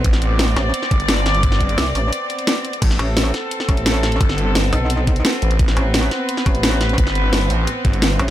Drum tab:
CC |----------------|----------------|x---------------|----------------|
HH |x-x-x-x-x-xxx-xx|x-xxx-o-x-xxx-xx|x-x-x-x-x-xxx-xx|x-x-x-o-x-xxx-xx|
SD |-o--o-o--o--o-o-|-o--o-------o---|-o--o-o--o--o-o-|-o--o-------o---|
BD |o---------o-----|o-o-------------|o---------o-----|o---------o-----|

CC |----------------|----------------|
HH |x-x-x-x-x-xxx-xx|x-x-x-o-x-xxx-x-|
SD |-o--o-o--o--o-o-|-o--o-------o---|
BD |o---------o-----|o---------o-----|